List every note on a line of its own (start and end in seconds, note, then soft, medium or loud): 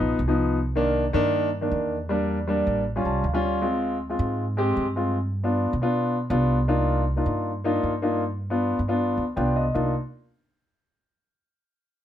0.00 0.17 A#1 medium
0.00 0.17 F3 medium
0.00 0.17 B3 medium
0.00 0.17 D#4 loud
0.19 1.08 C2 medium
0.28 0.57 F3 medium
0.28 0.57 B3 medium
0.28 0.57 D#4 medium
0.75 1.03 D#3 medium
0.75 1.03 A#3 medium
0.75 1.03 D4 loud
1.13 1.67 G2 medium
1.13 1.47 D#3 loud
1.13 1.47 A#3 medium
1.13 1.48 D4 loud
1.61 1.95 D#3 medium
1.61 1.95 A#3 medium
1.61 1.96 D4 medium
1.71 2.61 E2 medium
2.09 2.36 G3 medium
2.09 2.36 A#3 medium
2.09 2.37 D4 medium
2.48 2.81 G3 medium
2.48 2.81 A#3 medium
2.48 2.82 D4 medium
2.67 3.02 A1 medium
2.96 3.23 G3 medium
2.96 3.23 C#4 medium
2.96 3.23 F4 medium
3.05 3.23 C2 medium
3.05 3.23 A5 medium
3.24 4.14 D2 medium
3.24 3.43 F5 medium
3.33 3.62 G3 medium
3.33 3.63 C#4 medium
3.33 3.61 F4 loud
3.44 3.61 C#5 medium
3.62 3.96 G#3 medium
3.62 3.96 C4 medium
3.62 3.96 F4 medium
4.09 4.43 G#3 medium
4.09 4.44 C4 medium
4.09 4.44 F4 medium
4.19 4.73 G#2 medium
4.57 4.84 G#3 medium
4.57 4.85 C4 medium
4.57 4.85 G4 loud
4.77 5.67 G2 medium
4.96 5.15 G#3 medium
4.96 5.16 C4 medium
4.96 5.16 F4 medium
5.43 5.71 B3 medium
5.43 5.71 D4 medium
5.43 5.71 F4 medium
5.73 6.26 B2 medium
5.82 6.16 B3 medium
5.82 6.16 D4 medium
5.82 6.16 F4 loud
6.30 7.20 C2 loud
6.30 6.57 B3 medium
6.30 6.57 D4 medium
6.30 6.57 F4 medium
6.68 7.02 A#3 medium
6.68 7.02 D4 medium
6.68 7.02 D#4 medium
6.68 7.02 F4 medium
7.16 7.50 A#3 medium
7.16 7.50 D4 medium
7.16 7.50 D#4 medium
7.16 7.51 F4 medium
7.26 7.79 G2 medium
7.64 7.91 A#3 medium
7.64 7.91 D4 medium
7.64 7.92 D#4 medium
7.64 7.92 F4 loud
7.83 8.73 G2 medium
8.02 8.22 A#3 medium
8.02 8.22 D4 medium
8.02 8.22 D#4 medium
8.02 8.22 F4 medium
8.50 8.77 B3 medium
8.50 8.77 D4 medium
8.50 8.78 F4 medium
8.79 9.15 G2 medium
8.88 9.22 B3 medium
8.88 9.22 D4 medium
8.88 9.22 F4 loud
9.17 9.35 D2 medium
9.36 9.71 C2 medium
9.36 9.63 B3 medium
9.36 9.64 D4 medium
9.36 9.64 F4 medium
9.36 9.55 G5 medium
9.56 9.74 D#5 medium
9.74 9.93 C2 medium
9.74 9.93 A#3 medium
9.74 9.93 D4 medium
9.74 9.93 D#4 medium
9.74 9.93 F4 medium